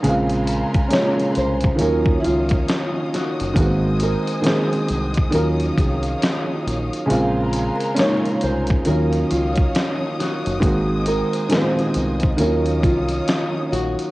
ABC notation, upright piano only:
X:1
M:4/4
L:1/8
Q:"Swing 16ths" 1/4=68
K:Ebdor
V:1 name="Upright piano"
[D,A,B,CF]2 [A,B,DF]2 [E,G,B,DF]4 | [E,A,B,_C=CG]2 [E,A,B,CA]2 [E,G,B,DF]4 | [D,A,B,CF]2 [A,B,DE]2 [E,G,B,DF]4 | [E,A,B,CG]2 [E,A,B,_C=CF]2 [E,G,B,DF]4 |]